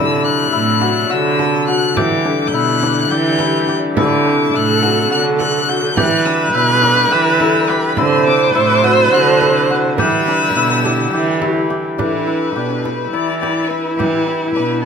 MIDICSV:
0, 0, Header, 1, 8, 480
1, 0, Start_track
1, 0, Key_signature, 1, "minor"
1, 0, Tempo, 573066
1, 1643, Time_signature, 7, 3, 24, 8
1, 12439, End_track
2, 0, Start_track
2, 0, Title_t, "Violin"
2, 0, Program_c, 0, 40
2, 0, Note_on_c, 0, 88, 94
2, 197, Note_off_c, 0, 88, 0
2, 202, Note_on_c, 0, 90, 99
2, 928, Note_on_c, 0, 88, 94
2, 941, Note_off_c, 0, 90, 0
2, 1397, Note_off_c, 0, 88, 0
2, 1402, Note_on_c, 0, 90, 96
2, 1650, Note_on_c, 0, 86, 96
2, 1663, Note_off_c, 0, 90, 0
2, 2072, Note_on_c, 0, 91, 70
2, 2085, Note_off_c, 0, 86, 0
2, 2127, Note_on_c, 0, 90, 103
2, 2140, Note_off_c, 0, 91, 0
2, 2603, Note_on_c, 0, 91, 103
2, 2615, Note_off_c, 0, 90, 0
2, 3144, Note_off_c, 0, 91, 0
2, 3331, Note_on_c, 0, 86, 93
2, 3812, Note_on_c, 0, 90, 105
2, 3824, Note_off_c, 0, 86, 0
2, 4280, Note_off_c, 0, 90, 0
2, 4285, Note_on_c, 0, 90, 93
2, 4393, Note_off_c, 0, 90, 0
2, 4516, Note_on_c, 0, 90, 99
2, 4762, Note_on_c, 0, 91, 94
2, 4774, Note_off_c, 0, 90, 0
2, 4994, Note_on_c, 0, 90, 100
2, 5007, Note_off_c, 0, 91, 0
2, 5239, Note_on_c, 0, 88, 89
2, 5252, Note_off_c, 0, 90, 0
2, 5480, Note_off_c, 0, 88, 0
2, 5485, Note_on_c, 0, 90, 107
2, 5961, Note_on_c, 0, 88, 98
2, 5974, Note_off_c, 0, 90, 0
2, 6445, Note_on_c, 0, 83, 86
2, 6458, Note_off_c, 0, 88, 0
2, 6677, Note_on_c, 0, 84, 90
2, 6689, Note_off_c, 0, 83, 0
2, 6919, Note_off_c, 0, 84, 0
2, 6924, Note_on_c, 0, 86, 87
2, 7148, Note_off_c, 0, 86, 0
2, 7164, Note_on_c, 0, 86, 96
2, 7406, Note_on_c, 0, 88, 98
2, 7418, Note_off_c, 0, 86, 0
2, 7657, Note_on_c, 0, 90, 86
2, 7669, Note_off_c, 0, 88, 0
2, 8130, Note_off_c, 0, 90, 0
2, 8369, Note_on_c, 0, 88, 118
2, 9532, Note_off_c, 0, 88, 0
2, 10043, Note_on_c, 0, 71, 92
2, 11001, Note_on_c, 0, 74, 94
2, 11013, Note_off_c, 0, 71, 0
2, 11214, Note_off_c, 0, 74, 0
2, 11219, Note_on_c, 0, 74, 89
2, 11456, Note_on_c, 0, 71, 84
2, 11469, Note_off_c, 0, 74, 0
2, 11692, Note_off_c, 0, 71, 0
2, 11697, Note_on_c, 0, 71, 90
2, 12157, Note_off_c, 0, 71, 0
2, 12170, Note_on_c, 0, 71, 86
2, 12404, Note_off_c, 0, 71, 0
2, 12409, Note_on_c, 0, 69, 84
2, 12439, Note_off_c, 0, 69, 0
2, 12439, End_track
3, 0, Start_track
3, 0, Title_t, "Celesta"
3, 0, Program_c, 1, 8
3, 0, Note_on_c, 1, 74, 78
3, 835, Note_off_c, 1, 74, 0
3, 1885, Note_on_c, 1, 69, 51
3, 2760, Note_off_c, 1, 69, 0
3, 2843, Note_on_c, 1, 67, 57
3, 3004, Note_on_c, 1, 71, 47
3, 3178, Note_on_c, 1, 74, 48
3, 3531, Note_off_c, 1, 67, 0
3, 3671, Note_off_c, 1, 71, 0
3, 3819, Note_off_c, 1, 74, 0
3, 6214, Note_on_c, 1, 69, 51
3, 6896, Note_off_c, 1, 69, 0
3, 9578, Note_on_c, 1, 67, 75
3, 10063, Note_on_c, 1, 69, 42
3, 10257, Note_off_c, 1, 67, 0
3, 10928, Note_off_c, 1, 69, 0
3, 12439, End_track
4, 0, Start_track
4, 0, Title_t, "Viola"
4, 0, Program_c, 2, 41
4, 3323, Note_on_c, 2, 69, 96
4, 4972, Note_off_c, 2, 69, 0
4, 4992, Note_on_c, 2, 71, 121
4, 6685, Note_on_c, 2, 72, 123
4, 6698, Note_off_c, 2, 71, 0
4, 8355, Note_off_c, 2, 72, 0
4, 8361, Note_on_c, 2, 71, 109
4, 9083, Note_on_c, 2, 67, 85
4, 9095, Note_off_c, 2, 71, 0
4, 9803, Note_off_c, 2, 67, 0
4, 10041, Note_on_c, 2, 64, 81
4, 10529, Note_on_c, 2, 62, 75
4, 10541, Note_off_c, 2, 64, 0
4, 10767, Note_on_c, 2, 64, 91
4, 10779, Note_off_c, 2, 62, 0
4, 12439, Note_off_c, 2, 64, 0
4, 12439, End_track
5, 0, Start_track
5, 0, Title_t, "Hammered dulcimer"
5, 0, Program_c, 3, 15
5, 0, Note_on_c, 3, 62, 75
5, 0, Note_on_c, 3, 64, 90
5, 0, Note_on_c, 3, 67, 74
5, 0, Note_on_c, 3, 69, 74
5, 192, Note_off_c, 3, 62, 0
5, 195, Note_on_c, 3, 62, 73
5, 250, Note_off_c, 3, 69, 0
5, 436, Note_off_c, 3, 64, 0
5, 439, Note_on_c, 3, 64, 84
5, 678, Note_on_c, 3, 66, 78
5, 729, Note_off_c, 3, 67, 0
5, 918, Note_off_c, 3, 66, 0
5, 921, Note_on_c, 3, 66, 79
5, 1162, Note_on_c, 3, 69, 72
5, 1401, Note_off_c, 3, 66, 0
5, 1405, Note_on_c, 3, 66, 77
5, 1648, Note_on_c, 3, 67, 88
5, 1698, Note_off_c, 3, 66, 0
5, 1880, Note_off_c, 3, 62, 0
5, 1884, Note_on_c, 3, 62, 73
5, 2122, Note_off_c, 3, 64, 0
5, 2126, Note_on_c, 3, 64, 85
5, 2364, Note_off_c, 3, 62, 0
5, 2367, Note_on_c, 3, 62, 80
5, 2603, Note_off_c, 3, 67, 0
5, 2607, Note_on_c, 3, 67, 79
5, 2844, Note_off_c, 3, 64, 0
5, 2847, Note_on_c, 3, 64, 72
5, 3083, Note_off_c, 3, 67, 0
5, 3087, Note_on_c, 3, 67, 73
5, 3322, Note_off_c, 3, 64, 0
5, 3326, Note_on_c, 3, 64, 92
5, 3558, Note_off_c, 3, 62, 0
5, 3561, Note_on_c, 3, 62, 69
5, 3615, Note_off_c, 3, 69, 0
5, 3797, Note_off_c, 3, 64, 0
5, 3800, Note_on_c, 3, 64, 88
5, 4044, Note_on_c, 3, 66, 75
5, 4094, Note_off_c, 3, 67, 0
5, 4277, Note_off_c, 3, 66, 0
5, 4280, Note_on_c, 3, 66, 78
5, 4521, Note_on_c, 3, 69, 70
5, 4761, Note_off_c, 3, 66, 0
5, 4765, Note_on_c, 3, 66, 74
5, 5001, Note_on_c, 3, 67, 93
5, 5051, Note_off_c, 3, 66, 0
5, 5238, Note_off_c, 3, 62, 0
5, 5241, Note_on_c, 3, 62, 75
5, 5480, Note_off_c, 3, 64, 0
5, 5483, Note_on_c, 3, 64, 83
5, 5717, Note_off_c, 3, 62, 0
5, 5721, Note_on_c, 3, 62, 80
5, 5956, Note_off_c, 3, 67, 0
5, 5959, Note_on_c, 3, 67, 88
5, 6202, Note_off_c, 3, 64, 0
5, 6205, Note_on_c, 3, 64, 73
5, 6441, Note_off_c, 3, 67, 0
5, 6444, Note_on_c, 3, 67, 77
5, 6679, Note_off_c, 3, 64, 0
5, 6682, Note_on_c, 3, 64, 92
5, 6925, Note_off_c, 3, 62, 0
5, 6928, Note_on_c, 3, 62, 77
5, 6974, Note_off_c, 3, 69, 0
5, 7159, Note_off_c, 3, 64, 0
5, 7163, Note_on_c, 3, 64, 88
5, 7401, Note_on_c, 3, 66, 81
5, 7451, Note_off_c, 3, 67, 0
5, 7638, Note_off_c, 3, 66, 0
5, 7642, Note_on_c, 3, 66, 86
5, 7887, Note_on_c, 3, 69, 74
5, 8125, Note_off_c, 3, 66, 0
5, 8129, Note_on_c, 3, 66, 81
5, 8366, Note_on_c, 3, 67, 96
5, 8417, Note_off_c, 3, 66, 0
5, 8604, Note_off_c, 3, 62, 0
5, 8608, Note_on_c, 3, 62, 76
5, 8844, Note_off_c, 3, 64, 0
5, 8847, Note_on_c, 3, 64, 84
5, 9083, Note_off_c, 3, 62, 0
5, 9086, Note_on_c, 3, 62, 82
5, 9322, Note_off_c, 3, 67, 0
5, 9326, Note_on_c, 3, 67, 82
5, 9559, Note_off_c, 3, 64, 0
5, 9562, Note_on_c, 3, 64, 73
5, 9797, Note_off_c, 3, 67, 0
5, 9801, Note_on_c, 3, 67, 74
5, 10035, Note_off_c, 3, 62, 0
5, 10038, Note_on_c, 3, 62, 81
5, 10275, Note_off_c, 3, 64, 0
5, 10278, Note_on_c, 3, 64, 60
5, 10339, Note_off_c, 3, 69, 0
5, 10516, Note_off_c, 3, 67, 0
5, 10519, Note_on_c, 3, 67, 74
5, 10753, Note_off_c, 3, 64, 0
5, 10756, Note_on_c, 3, 64, 67
5, 10996, Note_off_c, 3, 64, 0
5, 10999, Note_on_c, 3, 64, 68
5, 11235, Note_off_c, 3, 67, 0
5, 11238, Note_on_c, 3, 67, 64
5, 11475, Note_off_c, 3, 64, 0
5, 11478, Note_on_c, 3, 64, 65
5, 11713, Note_off_c, 3, 67, 0
5, 11716, Note_on_c, 3, 67, 80
5, 11950, Note_off_c, 3, 64, 0
5, 11954, Note_on_c, 3, 64, 60
5, 12190, Note_off_c, 3, 62, 0
5, 12194, Note_on_c, 3, 62, 73
5, 12431, Note_off_c, 3, 64, 0
5, 12439, Note_off_c, 3, 62, 0
5, 12439, Note_off_c, 3, 67, 0
5, 12439, End_track
6, 0, Start_track
6, 0, Title_t, "String section"
6, 0, Program_c, 4, 48
6, 0, Note_on_c, 4, 48, 75
6, 0, Note_on_c, 4, 54, 70
6, 0, Note_on_c, 4, 62, 86
6, 1631, Note_off_c, 4, 48, 0
6, 1633, Note_off_c, 4, 62, 0
6, 1634, Note_off_c, 4, 54, 0
6, 1642, Note_on_c, 4, 50, 76
6, 1642, Note_on_c, 4, 55, 69
6, 1642, Note_on_c, 4, 64, 85
6, 3308, Note_off_c, 4, 50, 0
6, 3308, Note_off_c, 4, 55, 0
6, 3308, Note_off_c, 4, 64, 0
6, 3328, Note_on_c, 4, 48, 69
6, 3332, Note_on_c, 4, 54, 64
6, 3333, Note_on_c, 4, 62, 82
6, 4991, Note_off_c, 4, 48, 0
6, 4993, Note_off_c, 4, 54, 0
6, 4993, Note_off_c, 4, 62, 0
6, 5014, Note_on_c, 4, 64, 86
6, 5015, Note_on_c, 4, 50, 74
6, 5016, Note_on_c, 4, 55, 69
6, 6673, Note_off_c, 4, 50, 0
6, 6673, Note_off_c, 4, 64, 0
6, 6674, Note_off_c, 4, 55, 0
6, 6676, Note_on_c, 4, 54, 74
6, 6677, Note_on_c, 4, 48, 79
6, 6680, Note_on_c, 4, 62, 91
6, 8342, Note_off_c, 4, 54, 0
6, 8343, Note_off_c, 4, 48, 0
6, 8345, Note_off_c, 4, 62, 0
6, 8368, Note_on_c, 4, 55, 73
6, 8371, Note_on_c, 4, 64, 82
6, 8372, Note_on_c, 4, 50, 80
6, 10028, Note_off_c, 4, 55, 0
6, 10030, Note_off_c, 4, 50, 0
6, 10030, Note_off_c, 4, 64, 0
6, 12439, End_track
7, 0, Start_track
7, 0, Title_t, "Cello"
7, 0, Program_c, 5, 42
7, 0, Note_on_c, 5, 50, 90
7, 370, Note_off_c, 5, 50, 0
7, 447, Note_on_c, 5, 45, 90
7, 851, Note_off_c, 5, 45, 0
7, 926, Note_on_c, 5, 50, 96
7, 1534, Note_off_c, 5, 50, 0
7, 1639, Note_on_c, 5, 52, 92
7, 2047, Note_off_c, 5, 52, 0
7, 2120, Note_on_c, 5, 47, 82
7, 2528, Note_off_c, 5, 47, 0
7, 2607, Note_on_c, 5, 52, 93
7, 3216, Note_off_c, 5, 52, 0
7, 3322, Note_on_c, 5, 50, 96
7, 3730, Note_off_c, 5, 50, 0
7, 3808, Note_on_c, 5, 45, 89
7, 4213, Note_off_c, 5, 45, 0
7, 4289, Note_on_c, 5, 50, 85
7, 4897, Note_off_c, 5, 50, 0
7, 5006, Note_on_c, 5, 52, 97
7, 5412, Note_off_c, 5, 52, 0
7, 5481, Note_on_c, 5, 47, 89
7, 5889, Note_off_c, 5, 47, 0
7, 5962, Note_on_c, 5, 52, 91
7, 6573, Note_off_c, 5, 52, 0
7, 6685, Note_on_c, 5, 50, 100
7, 7091, Note_off_c, 5, 50, 0
7, 7167, Note_on_c, 5, 45, 90
7, 7572, Note_off_c, 5, 45, 0
7, 7651, Note_on_c, 5, 50, 96
7, 8257, Note_off_c, 5, 50, 0
7, 8370, Note_on_c, 5, 52, 91
7, 8773, Note_off_c, 5, 52, 0
7, 8843, Note_on_c, 5, 47, 86
7, 9249, Note_off_c, 5, 47, 0
7, 9329, Note_on_c, 5, 52, 87
7, 9935, Note_off_c, 5, 52, 0
7, 10042, Note_on_c, 5, 52, 87
7, 10449, Note_off_c, 5, 52, 0
7, 10522, Note_on_c, 5, 47, 76
7, 10928, Note_off_c, 5, 47, 0
7, 10995, Note_on_c, 5, 52, 76
7, 11608, Note_off_c, 5, 52, 0
7, 11715, Note_on_c, 5, 52, 89
7, 12125, Note_off_c, 5, 52, 0
7, 12201, Note_on_c, 5, 47, 73
7, 12439, Note_off_c, 5, 47, 0
7, 12439, End_track
8, 0, Start_track
8, 0, Title_t, "Frame drum"
8, 683, Note_on_c, 9, 64, 48
8, 767, Note_off_c, 9, 64, 0
8, 1165, Note_on_c, 9, 64, 48
8, 1249, Note_off_c, 9, 64, 0
8, 1649, Note_on_c, 9, 64, 60
8, 1733, Note_off_c, 9, 64, 0
8, 1886, Note_on_c, 9, 64, 19
8, 1970, Note_off_c, 9, 64, 0
8, 2369, Note_on_c, 9, 64, 48
8, 2453, Note_off_c, 9, 64, 0
8, 2839, Note_on_c, 9, 64, 54
8, 2922, Note_off_c, 9, 64, 0
8, 3079, Note_on_c, 9, 64, 20
8, 3163, Note_off_c, 9, 64, 0
8, 3323, Note_on_c, 9, 64, 61
8, 3407, Note_off_c, 9, 64, 0
8, 4044, Note_on_c, 9, 64, 51
8, 4128, Note_off_c, 9, 64, 0
8, 4525, Note_on_c, 9, 64, 50
8, 4608, Note_off_c, 9, 64, 0
8, 5002, Note_on_c, 9, 64, 62
8, 5086, Note_off_c, 9, 64, 0
8, 5720, Note_on_c, 9, 64, 53
8, 5804, Note_off_c, 9, 64, 0
8, 6200, Note_on_c, 9, 64, 53
8, 6284, Note_off_c, 9, 64, 0
8, 6675, Note_on_c, 9, 64, 59
8, 6759, Note_off_c, 9, 64, 0
8, 7404, Note_on_c, 9, 64, 47
8, 7488, Note_off_c, 9, 64, 0
8, 7881, Note_on_c, 9, 64, 52
8, 7965, Note_off_c, 9, 64, 0
8, 8360, Note_on_c, 9, 64, 59
8, 8444, Note_off_c, 9, 64, 0
8, 8851, Note_on_c, 9, 64, 20
8, 8935, Note_off_c, 9, 64, 0
8, 9093, Note_on_c, 9, 64, 50
8, 9177, Note_off_c, 9, 64, 0
8, 9329, Note_on_c, 9, 64, 20
8, 9413, Note_off_c, 9, 64, 0
8, 9564, Note_on_c, 9, 64, 53
8, 9647, Note_off_c, 9, 64, 0
8, 9807, Note_on_c, 9, 64, 20
8, 9891, Note_off_c, 9, 64, 0
8, 10043, Note_on_c, 9, 64, 59
8, 10127, Note_off_c, 9, 64, 0
8, 10767, Note_on_c, 9, 64, 45
8, 10851, Note_off_c, 9, 64, 0
8, 11006, Note_on_c, 9, 64, 17
8, 11089, Note_off_c, 9, 64, 0
8, 11250, Note_on_c, 9, 64, 46
8, 11334, Note_off_c, 9, 64, 0
8, 11726, Note_on_c, 9, 64, 53
8, 11809, Note_off_c, 9, 64, 0
8, 12439, End_track
0, 0, End_of_file